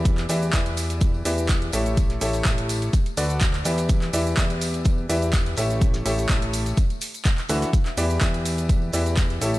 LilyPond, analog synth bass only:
\new Staff \with { instrumentName = "Analog synth bass" } { \clef bass \time 4/4 \key e \dorian \tempo 4 = 125 e,8 e,8 e,4. e,4 a,,8~ | a,,8 a,,8 a,,4 r8 d,4 e,8~ | e,8 e,8 e,4. e,4 a,,8~ | a,,8 a,,8 a,,4 r4. d,8 |
r8 e,8 e,4. e,4 a,,8 | }